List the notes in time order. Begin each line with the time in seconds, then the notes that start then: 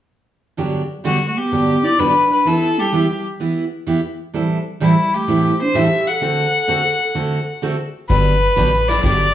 0.57 G2 D3 F#3 B3 D4 G4
1.04 G2 D3 F#3 G3 B3 D4 F#4 G4
1.27 A3 F#4
1.36 B3 G4
1.52 G2 D3 F#3 B3 D4 G4
1.83 E4 D5
1.98 G2 D3 F#3 B3 D4 G4 B4
2.30 D4 B4
2.45 E3 B3 E4 G4 A4
2.78 G3 G4
2.92 E3 B3 E4 G4
3.40 E3 B3 E4 G4
3.87 E3 B3 E4 G4
4.34 A2 E3 G3 C4 E4 A4
4.80 A2 E3 G3 C4 E4 A4
5.14 A3 G4
5.27 A2 E3 G3 C4 E4 A4
5.61 D4 C5
5.74 A2 E3 G3 C4 E4 G4 A4 E5
6.07 A4 F#5
6.21 D3 A3 C4 F#4 A4
6.68 D3 A3 C4 F#4 A4
7.15 D3 A3 C4 F#4 A4
7.62 D3 A3 C4 F#4 A4
8.08 G1 D3 F#3 B3 D4 G4 B4, kick, open hi-hat
8.56 A1 D3 F#3 B3 D4 G4, closed hi-hat
8.89 D5, snare, open hi-hat
9.03 G1 D3 F#3 B3 D4 G4 D5, kick, snare, open hi-hat